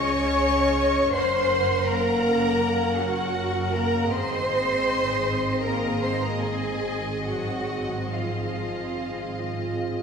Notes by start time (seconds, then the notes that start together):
Already playing: C#2 C#4 G#4 C#5 D#5 C#6
1.13 F#1 A#4 C5 F#5 C6
1.87 A#3 A#4 A#5
2.96 F#3 F#4 F#5
3.72 A#3 A#4 A#5
4.11 G#1 C4 G#4 C5 D#5 C6
5.61 A#3 A#4 A#5
6.02 C4 C5 C6
6.21 A#3 A#4 A#5
6.41 G#3 G#4 G#5
7.24 F#3 F#4 F#5
8.12 F3 F4 F5
9.37 F4